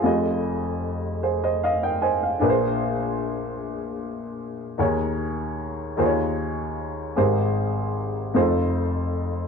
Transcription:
\new Staff \with { instrumentName = "Upright piano" } { \time 6/8 \key f \minor \tempo 4. = 51 << { r4. <aes' c''>16 <c'' ees''>16 <ees'' f''>16 <ees'' g''>16 <c'' ees'' aes''>16 f''16~ | f''16 r2 r8. | r2. | r2. | } \\ { <f,, f, f' g' aes' ees''>2. | <bes,, bes, d' aes' bes' ces'' c''>2. | <ees, ees ees' aes' bes' des''>4. <ees, ees ees' f' aes' c'' des''>4. | <aes,, aes, g' aes' bes' c''>4. <f,, f, ees' f' aes' a' c''>4. | } >> }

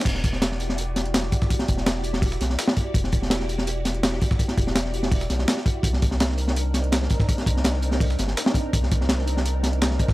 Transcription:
<<
  \new Staff \with { instrumentName = "String machine" } { \time 4/4 \key e \minor \tempo 4 = 166 <e' fis' g' d''>2. r4 | <e' fis' g' d''>2. r4 | <e' fis' g' d''>2. r4 | <e' fis' g' d''>2. r4 |
<c' d' ees' bes'>2. r4 | <c' d' ees' bes'>2. r4 | <c' d' ees' bes'>2. r4 | }
  \new Staff \with { instrumentName = "Sub bass" } { \clef bass \time 4/4 \key e \minor e,,2.~ e,,8 r8 | r8 e,,4. e,,8 b,,8 r4 | e,,2.~ e,,8 r8 | r8 e,,4. e,,8 b,,8 r4 |
c,2.~ c,8 r8 | r8 c,4. c,8 g,,8 r4 | c,2.~ c,8 r8 | }
  \new DrumStaff \with { instrumentName = "Drums" } \drummode { \time 4/4 <cymc hh bd>16 sn16 <hh bd>16 sn16 <hh sn>16 sn16 hh16 sn16 hh8 <hh sn>16 hh16 <hh sn>16 sn16 <hh bd>16 <bd sn>16 | <hh bd>16 <hh sn>16 <hh bd>16 sn16 <hh sn>16 sn16 hh16 sn16 <hh hho bd>16 <hh sn>16 <hh sn>16 sn16 <hh sn>16 sn16 <hh bd>8 | <hh bd>16 sn16 <hh bd>16 sn16 <hh sn>16 sn16 hh16 sn16 hh8 <hh sn>16 hh16 <hh sn>16 sn16 <hh bd>16 <bd sn>16 | <hh bd>16 <hh sn>16 <hh bd>16 sn16 <hh sn>16 sn16 hh16 sn16 <hh hho bd>16 <hh sn>16 <hh sn>16 sn16 <hh sn>16 sn16 <hh bd>8 |
<hh bd>16 sn16 <hh bd>16 sn16 <hh sn>16 sn16 hh16 sn16 hh8 <hh sn>16 hh16 <hh sn>16 sn16 <hh bd>16 <bd sn>16 | <hh bd>16 <hh sn>16 <hh bd>16 sn16 <hh sn>16 sn16 hh16 sn16 <hh hho bd>16 <hh sn>16 <hh sn>16 sn16 <hh sn>16 sn16 <hh bd>8 | <hh bd>16 sn16 <hh bd>16 sn16 <hh sn>16 sn16 hh16 sn16 hh8 <hh sn>16 hh16 <hh sn>16 sn16 <hh bd>16 <bd sn>16 | }
>>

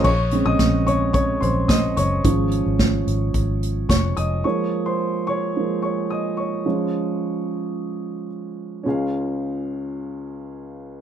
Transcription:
<<
  \new Staff \with { instrumentName = "Grand piano" } { \time 4/4 \key des \major \tempo 4 = 109 <des'' des'''>8. <ees'' ees'''>8. <des'' des'''>8 <des'' des'''>8 <c'' c'''>8 <ees'' ees'''>8 <des'' des'''>8~ | <des'' des'''>2. <des'' des'''>8 <ees'' ees'''>8 | <des'' des'''>8. <c'' c'''>8. <des'' des'''>4 <des'' des'''>8 <ees'' ees'''>8 <des'' des'''>8~ | <des'' des'''>2. r4 |
<des' f' aes' f''>1 | }
  \new Staff \with { instrumentName = "Grand piano" } { \clef bass \time 4/4 \key des \major r8 <des aes c'>2.~ <des aes c'>8 | <f aes des'>8 r2. r8 | <f aes bes>4. r8 <f aes bes>8 r4. | <f aes des'>1 |
des,1 | }
  \new Staff \with { instrumentName = "Fingered electric bass" } { \clef bass \time 4/4 \key des \major bes,,8. bes,,16 bes,,4. bes,,4 ges,,8 | aes,,8. aes,,8. aes,,8 aes,,4 f,,8 f,,8 | r1 | r1 |
r1 | }
  \new DrumStaff \with { instrumentName = "Drums" } \drummode { \time 4/4 <cymc bd>8 hh8 <hh bd sn>8 <hh tomfh>8 <hh bd>8 <hh tomfh>8 <hh bd sn>8 <hh tomfh>8 | <hh bd>8 hh8 <hh bd sn>8 hh8 <hh bd>8 hh8 <hh bd sn>8 hh8 | r4 r4 r4 r4 | r4 r4 r4 r4 |
r4 r4 r4 r4 | }
>>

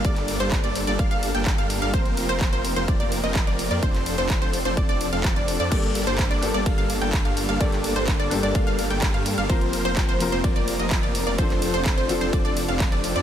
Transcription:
<<
  \new Staff \with { instrumentName = "Synth pluck" } { \time 4/4 \key g \minor \tempo 4 = 127 d''8. c''8 d''8 d''16 f''16 f''8 g''8 f''8 f''16 | c''8. c''8 c''8 c''16 d''16 d''8 ees''8 d''8 d''16 | c''8. c''8 c''8 c''16 d''16 d''8 f''8 d''8 d''16 | d''8. c''8 d''8 d''16 f''16 f''8 g''8 f''8 f''16 |
d''8. c''8 d''8 d''16 f''16 f''8 g''8 f''8 f''16 | c''8. c''8 c''8 c''16 d''16 d''8 ees''8 d''8 d''16 | c''8. c''8 c''8 c''16 d''16 d''8 f''8 d''8 d''16 | }
  \new Staff \with { instrumentName = "Grand piano" } { \time 4/4 \key g \minor r1 | r1 | r1 | <g, bes d' g' a'>4. <g, bes d' g' a'>2~ <g, bes d' g' a'>8 |
<g, bes d' g' a'>4. <g, bes d' g' a'>2~ <g, bes d' g' a'>8 | <f bes c' f' bes'>4. <f bes c' f' bes'>2~ <f bes c' f' bes'>8 | <f c' d' f' a'>4. <f c' d' f' a'>2~ <f c' d' f' a'>8 | }
  \new Staff \with { instrumentName = "Supersaw synth" } { \time 4/4 \key g \minor <g bes d' a' d''>8. <g bes d' a' c''>8 <g bes d' a' d''>8 <g bes d' a' d''>16 <g bes d' a' f''>16 <g bes d' a' f''>8 <g bes d' a' g''>8 <g bes d' a' f''>8 <g bes d' a' f''>16 | <f bes>8. <f bes c' bes' c''>8 <f bes c' bes' c''>8 <f bes c' bes' c''>16 <f bes c' bes' d''>16 <f bes c' bes' d''>8 <f bes c' bes' ees''>8 <f bes c' bes' d''>8 <f bes c' bes' d''>16 | <f c' d' a' c''>8. <f c' d' a' c''>8 <f c' d' a' c''>8 <f c' d' a' c''>16 <f d' a'>16 <f c' d' a' d''>8 <f c' d' a' f''>8 <f c' d' a' d''>8 <f c' d' a' d''>16 | <g bes d' d''>8. <g bes d' a' c''>8 <g bes d' a' d''>8 <g bes d' a' d''>16 <g bes d' a' f''>16 <g bes d' a' f''>8 <g bes d' a' g''>8 <g bes d' a' f''>8 <g bes d' a' f''>16 |
<g bes d' a' d''>8. <g bes d' a' c''>8 <g bes d' a' d''>8 <g bes d' a' d''>16 <bes d' a' f''>16 <g bes d' a' f''>8 <g bes d' a' g''>8 <g bes d' a' f''>8 <g bes d' a' f''>16 | <f bes c' bes' c''>8. <f bes c' bes' c''>8 <f bes c' bes' c''>8 <f bes c' bes' c''>16 <f bes c' bes' d''>16 <f bes c' bes' d''>8 <f bes c' bes' ees''>8 <f bes c' bes' d''>8 <f bes c' bes' d''>16 | <f c' d' a'>8. <f c' d' a' c''>8 <f c' d' a' c''>8 <f c' d' a' c''>16 <f c' d' a' d''>16 <f c' d' a' d''>8 <f c' d' a' f''>8 <f c' d' a' d''>8 <f c' d' a' d''>16 | }
  \new Staff \with { instrumentName = "Detuned saw bass" } { \clef bass \time 4/4 \key g \minor g,,8. g,,8 g,,8 g,,16 g,,16 g,,8 g,,8 g,,8 g,,16 | f,,8. f,,8 f,,8 f,,16 f,,16 f,,8 f,,8 f,,8 f,16 | f,,8. f,,8 f,,8 f,,16 f,,16 f,,8 f,,8 f,,8 f,16 | g,,8. g,,8 g,,8 g,,16 g,,16 g,,8 g,,8 g,,8 g,,16 |
g,,8. g,,8 g,,8 g,,16 g,,16 g,,8 g,,8 g,8 g,,16 | f,,8. f,,8 f,,8 f,,16 f,,16 f,,8 f,,8 f,,8 f,,16 | f,,8. f,,8 f,,8 f,,16 f,,16 f,,8 f,,8 f,,8 f,16 | }
  \new DrumStaff \with { instrumentName = "Drums" } \drummode { \time 4/4 <hh bd>16 <hc hh>16 hho16 hh16 <hc hh bd>16 hh16 hho16 hh16 <hh bd>16 hh16 hho16 hh16 <hc hh bd>16 hh16 hho16 hh16 | <hh bd>16 hh16 hho16 hh16 <hc hh bd>16 hh16 hho16 hh16 <hh bd>16 hh16 hho16 hh16 <hc hh bd>16 hh16 hho16 hh16 | <hh bd>16 <hc hh>16 hho16 hh16 <hc hh bd>16 hh16 hho16 hh16 <hh bd>16 hh16 hho16 hh16 <hc hh bd>16 hh16 hho16 hh16 | <cymc hh bd cymr>16 hh16 hho16 hh16 <hc hh bd cymr>16 hh16 hho16 hh16 <hh bd cymr>16 hh16 hho16 hh16 <hc hh bd cymr>16 hh16 hho16 hh16 |
<hh bd cymr>16 <hc hh>16 hho16 hh16 <hc hh bd cymr>16 hh16 hho16 hh16 <hh bd cymr>16 hh16 hho16 hh16 <hc hh bd cymr>16 hh16 hho16 hh16 | <hh bd cymr>16 hh16 hho16 hh16 <hc hh bd cymr>16 hh16 hho16 hh16 <hh bd cymr>16 hh16 hho16 hh16 <hc hh bd cymr>16 hh16 hho16 hh16 | <hh bd cymr>16 <hc hh>16 hho16 hh16 <hc hh bd cymr>16 hh16 hho16 hh16 <hh bd cymr>16 hh16 hho16 hh16 <hc hh bd cymr>16 hh16 hho16 hh16 | }
>>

